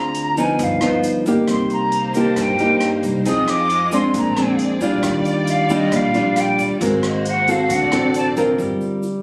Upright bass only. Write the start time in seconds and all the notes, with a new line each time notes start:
Already playing: D2
0.59 G1
0.81 D2
1.26 G1
1.48 C2
2.36 G2
2.59 G2
3.03 C2
3.25 F2
4.14 A#1
4.36 F2
4.81 A#1
5.03 D#2
5.92 A#1
6.14 A#1
6.58 D#2
6.81 G#1
7.70 D2
7.92 A1
8.36 A1
8.58 G1